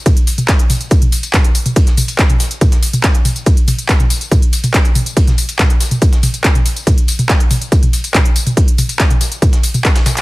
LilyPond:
\new DrumStaff \with { instrumentName = "Drums" } \drummode { \time 4/4 \tempo 4 = 141 <hh bd cymr tamb toml>16 hh16 <hho cymr tamb>16 <hh tamb toml>16 <hc hh bd cymr sn tamb>16 hh16 <hho cymr tamb toml>16 <hh tamb>16 <hh bd cymr tamb>16 <hh toml>16 <hho cymr tamb>16 <hh cymr tamb>16 <hc hh bd cymr sn tamb toml>16 hh16 <hho cymr tamb>16 <hh tamb toml>16 | <hh bd cymr tamb>16 <hh sn>16 <hho cymr tamb toml>16 <hh cymr tamb>16 <hc hh bd cymr sn tamb>16 <hh toml>16 <hho cymr sn tamb>16 <hh tamb>16 <hh bd cymr tamb toml>16 <hh sn>16 <hho cymr tamb>16 <hh tamb toml>16 <hc hh bd cymr sn tamb>16 hh16 <hho cymr tamb toml>16 <hh tamb>16 | <hh bd cymr tamb>16 hh16 <hho cymr tamb toml>16 <hh tamb>16 <hc hh bd cymr sn tamb>16 <hh toml>16 <hho cymr tamb>16 <hh tamb>16 <hh bd cymr tamb toml>16 hh16 <hho cymr tamb>16 <hh cymr tamb toml>16 <hc hh bd cymr sn tamb>16 hh16 <hho cymr tamb toml>16 <hh tamb>16 | <hh bd cymr tamb>16 <hh sn toml>16 <hho cymr tamb>16 <hh cymr tamb>16 <hc hh bd cymr sn tamb toml>16 hh16 <hho cymr sn tamb>16 <hh tamb toml>16 <hh bd cymr tamb>16 <hh sn>16 <hho cymr tamb toml>16 <hh tamb>16 <hc hh bd cymr sn tamb>16 <hh toml>16 <hho cymr tamb>16 <hh tamb>16 |
<hh bd cymr tamb toml>16 hh16 <hho cymr tamb>16 <hh tamb toml>16 <hc hh bd cymr sn tamb>16 hh16 <hho cymr tamb toml>16 <hh tamb>16 <hh bd cymr tamb>16 <hh toml>16 <hho cymr tamb>16 <hh cymr tamb>16 <hc hh bd cymr sn toml>16 hh16 <hho cymr tamb>16 <hh tamb toml>16 | <hh bd cymr tamb>16 hh16 <hho cymr tamb toml>16 <hh cymr tamb>16 <hc hh bd cymr sn tamb>16 <hh toml>16 <hho cymr sn tamb>16 <hh tamb>16 <hh bd cymr tamb toml>16 <hh sn>16 <hho cymr tamb>16 <hh tamb toml>16 <hc hh bd cymr sn tamb>16 <hh cymr sn>16 <hho cymr sn tamb toml>16 <hc hh tamb>16 | }